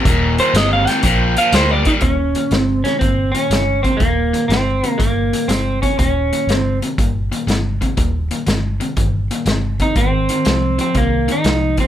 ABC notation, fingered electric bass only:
X:1
M:4/4
L:1/8
Q:"Swing" 1/4=121
K:Ebmix
V:1 name="Fingered electric bass" clef=bass
E,,,2 G,,,2 B,,,2 =D,,2 | E,,,2 G,,,2 G,,,2 G,,,2 | E,,,2 G,,,2 G,,,2 G,,,2 | E,,,2 G,,,2 G,,,2 G,,,2 |
E,,,2 G,,,2 G,,,2 G,,,2 | A,,,2 C,,2 C,,2 C,,2 |]